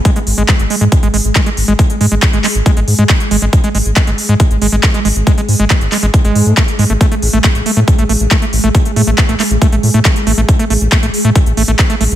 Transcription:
<<
  \new Staff \with { instrumentName = "Synth drone" } { \time 4/4 \tempo 4 = 138 <gis gis'>1~ | <gis gis'>1~ | <gis gis'>1~ | <gis gis'>1~ |
<gis gis'>1~ | <gis gis'>1~ | <gis gis'>1 | }
  \new Staff \with { instrumentName = "Acid bass" } { \clef bass \time 4/4 gis16 gis16 r16 gis16 gis16 r16 gis16 gis16 r16 gis16 gis16 r16 gis16 gis16 r16 gis16 | gis16 r16 gis16 gis16 r16 gis16 gis16 r16 gis16 gis16 r16 gis16 gis16 r16 gis16 gis16 | r16 gis16 gis16 r16 gis16 gis16 r16 gis16 gis16 r16 gis16 gis16 r16 gis16 gis16 r16 | gis16 gis16 r16 gis16 gis16 r16 gis16 gis16 r16 gis8 a16 a16 r16 gis16 a16 |
a16 a16 r16 a16 a16 r16 a16 a16 r16 a16 a16 r16 a16 a16 r16 a16 | a16 r16 a16 a16 r16 a16 a16 r16 a16 a16 r16 a16 a16 r16 a16 a16 | r16 a16 a16 r16 a16 a16 r16 a16 a16 r16 a16 a16 r16 a16 a16 r16 | }
  \new Staff \with { instrumentName = "Analog synth bass" } { \clef bass \time 4/4 r8 gis,,16 gis,,16 r16 gis,,16 r16 gis,16 r16 gis,,16 gis,,16 gis,,16 r8 gis,,16 gis,,16 | r8 gis,16 gis,,16 r16 gis,,16 r16 gis,,16 r16 gis,,16 gis,16 gis,16 r8 gis,,16 gis,,16 | r8 gis,,16 gis,,16 r16 gis,,16 r16 gis,16 r16 gis,,16 gis,,16 gis,,16 r8 gis,,16 gis,,16 | r8 gis,16 gis,,16 r16 gis,,16 r16 gis,,16 r16 gis,,16 gis,16 gis,16 r8 gis,16 gis,,16 |
r8 a,,16 a,,16 r16 a,,16 r16 a,16 r16 a,,16 a,,16 a,,16 r8 a,,16 a,,16 | r8 a,16 a,,16 r16 a,,16 r16 a,,16 r16 a,,16 a,16 a,16 r8 a,,16 a,,16 | r8 a,,16 a,,16 r16 a,,16 r16 a,16 r16 a,,16 a,,16 a,,16 r8 a,,16 a,,16 | }
  \new DrumStaff \with { instrumentName = "Drums" } \drummode { \time 4/4 <hh bd>16 hh16 hho16 hh16 <hc hh bd>16 hh16 hho16 hh16 <hh bd>16 hh16 hho16 hh16 <hc hh bd>16 hh16 hho16 hh16 | <hh bd>16 hh16 hho8 <hc hh bd>16 hh16 <hc hho>16 hh16 <hh bd>16 hh16 hho16 hh16 <hc hh bd>16 hh16 hho16 hh16 | <hh bd>16 hh16 hho16 hh16 <hc hh bd>16 hh16 hho16 hh16 <hh bd>16 hh16 hho16 hh16 <hc hh bd>16 hh16 hho16 hh16 | <hh bd>16 hh16 hho16 hh16 <hc hh bd>16 hh16 <hc hho>16 hh16 <hh bd>16 hh16 hho16 hh16 <hc hh bd>16 hh16 hho16 hh16 |
<hh bd>16 hh16 hho16 hh16 <hc hh bd>16 hh16 hho16 hh16 <hh bd>16 hh16 hho16 hh16 <hc hh bd>16 hh16 hho16 hh16 | <hh bd>16 hh16 hho16 hh16 <hc hh bd>16 hh16 <hc hho>16 hh16 <hh bd>16 hh16 hho16 hh16 <hc hh bd>16 hh16 hho16 hh16 | <hh bd>16 hh16 hho16 hh16 <hc hh bd>16 hh16 hho16 hh16 <hh bd>16 hh16 hho16 hh16 <hc hh bd>16 hh16 hho16 hh16 | }
>>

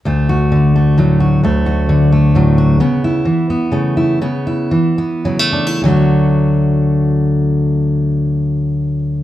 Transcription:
\new Staff \with { instrumentName = "Steel-string acoustic guitar" } { \time 3/4 \key d \major \tempo 4 = 122 << { a8 fis'4 a8 fis8 fis'8 | a8 fis'4 a8 fis8 fis'8 | b8 e'4 b8 a8 e'8 | b8 e'4 b8 fis16 a16 d'16 e'16 |
<d fis a fis'>2.~ | <d fis a fis'>2. | } \\ { d,4 d4 a,4 | d,4 d4 a,4 | cis4 e4 cis4 | cis4 e4 cis4 |
d,2.~ | d,2. | } >> }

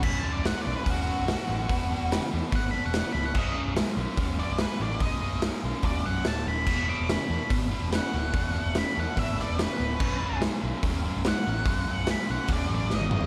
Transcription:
<<
  \new Staff \with { instrumentName = "Lead electric guitar" } { \time 4/4 \key b \mixolydian \tempo 4 = 144 \tuplet 3/2 { b''8 a''8 d''8 fis''8 d''8 b'8 fis'8 fis'4~ } fis'4~ | fis'4. r8 \tuplet 3/2 { fis''8 b''8 fis''8 fis''8 b''8 fis''8 } | dis''8 r2 d''8 b'8 d''8 | dis''4 r4 d''8 fis''8 a''8 b''8~ |
b''8 d'''8 b''4 r4 fis''4~ | fis''4 b''8 fis''8 e''8 d''8 b'4~ | b'4 r2 fis''4~ | fis''4 b''8 fis''8 d''8 d''8 dis''4 | }
  \new Staff \with { instrumentName = "Overdriven electric guitar" } { \clef bass \time 4/4 \key b \mixolydian <b,, fis,>8 <b,, fis,>8 <b,, gis,>8 <b,, fis,>8 <b,, fis,>8 <b,, fis,>8 <b,, gis,>8 <b,, fis,>8 | <e, b,>8 <e, b,>8 <e, cis>8 <e, b,>8 <e, b,>8 <e, b,>8 <e, cis>8 <e, b,>8 | <b,, fis,>8 <b,, fis,>8 <b,, gis,>8 <b,, fis,>8 <b,, fis,>8 <b,, fis,>8 <b,, gis,>8 <b,, fis,>8 | <b,, fis,>8 <b,, fis,>8 <b,, gis,>8 <b,, fis,>8 <b,, fis,>8 <b,, fis,>8 <b,, gis,>8 <b,, fis,>8 |
<e, b,>8 <e, b,>8 <e, cis>8 <e, b,>8 <e, b,>8 <e, b,>8 <e, cis>8 <e, b,>8 | <e, b,>8 <e, b,>8 <e, cis>8 <e, b,>8 <e, b,>8 <e, b,>8 <e, cis>8 <e, b,>8 | <b,, fis,>8 <b,, fis,>8 <b,, gis,>8 <b,, fis,>8 <b,, fis,>8 <b,, fis,>8 <b,, gis,>8 <b,, fis,>8 | <b,, fis,>8 <b,, fis,>8 <b,, gis,>8 <b,, fis,>8 <b,, fis,>8 <b,, fis,>8 <b,, gis,>8 <b,, fis,>8 | }
  \new Staff \with { instrumentName = "Picked electric bass" } { \clef bass \time 4/4 \key b \mixolydian b,,,8. b,,,8 r16 b,,16 r16 dis,,8. b,,,8 r16 a,,8 | e,,8. e,,8 r16 e,16 r16 gis,,8. e,,8 r16 cis,,8 | b,,,8. b,,,8 r16 b,,16 r16 dis,,8. b,,,8 r16 a,,8 | b,,,8. b,,,8 r16 b,,16 r16 dis,,8 b,,,8 d,,8 dis,,8 |
e,,8. e,,8 r16 e,16 r16 gis,,8. e,,8 r16 d,,8 | e,,8. e,,8 r16 e,16 r16 gis,,8. e,,8 r16 d,,8 | b,,,8. b,,,8 r16 b,,16 r16 dis,,8. b,,,8 r16 a,,8 | b,,,8. b,,,8 r16 b,,16 r16 dis,,8 a,,8 gis,,8 fis,,8 | }
  \new DrumStaff \with { instrumentName = "Drums" } \drummode { \time 4/4 <cymc bd>4 <hho sn>4 <hho bd>4 <hho sn>4 | <hho bd>4 <hho sn>4 <hho bd>4 <hho sn>4 | <cymc bd>4 <hho sn>4 <hho bd>4 <hho sn>4 | <hho bd>4 <hho sn>4 <hho bd>4 <hho sn>4 |
<cymc bd>4 <hho sn>4 <hho bd>4 <hho sn>4 | <hho bd>4 <hho sn>4 <hho bd>8 sn8 <hho sn>4 | <cymc bd>4 <hho sn>4 <hho bd>4 <hho sn>4 | <hho bd>4 <hho sn>4 <hho bd>4 sn16 tommh16 toml16 tomfh16 | }
>>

